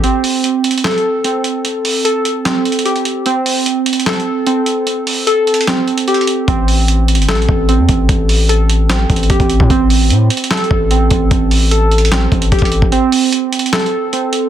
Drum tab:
HH |x-----o-----x-----x-x-x-x-x-x-------x-----x-----|x-----o-----x-----x-----x-----x-x-x-x--x--x-----|x-----o-----x-----x-x-x-x-x-x-------x-----x-----|x-----o-----x-----x-x-x-x-----x--x--x-x-x-x-----|
CP |------------------------x-----------------------|------------------------x-----------------------|------------------------x-----------------------|------------------------x-----------------------|
SD |------------------------o-----------------------|------------------------o-----------------------|------------------------o-----------------------|------------------------o-----------------------|
BD |------------------------------------------------|------------------------------------------------|------------------------------------------------|------------------------------------------------|

HH |x-----o-----x-----x-x-x-x-x-x-------x-----x-----|x-----o-----x-----x-----x-----x-x-x-x--x--x-----|x-----o-----x-----x-x-x-x-x-x-------x-----x-----|x-----o-----x-----x-x-x-x-----x--x--x-x-x-x-----|
CP |------------------------x-----------------------|------------------------x-----------------------|------------------------x-----------------------|------------------------x-----------------------|
SD |------------------------o-----------------------|------------------------o-----------------------|------------------------o-----------------------|------------------------o-----------------------|
BD |o-----------------------------o-----------o-----|o-----------------------------o-----o--o-----o--|o-----------------------------o-----------o-----|o-----------------------------o-----o--o-----o--|

HH |x-----o-----x-----x-x-x-x-x-x-------x-----x-----|
CP |------------------------x-----------------------|
SD |------------------------o-----------------------|
BD |------------------------------------------------|